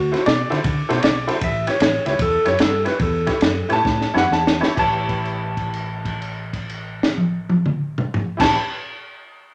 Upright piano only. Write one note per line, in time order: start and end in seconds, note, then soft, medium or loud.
0.22 0.25 C#5 medium
0.26 1.01 D5 medium
0.99 1.03 C#5 medium
1.04 1.35 D5 medium
3.73 4.15 A5 medium
4.18 4.31 F#5 medium
4.33 4.69 A5 medium
4.79 8.29 A5 medium
8.40 8.57 A5 medium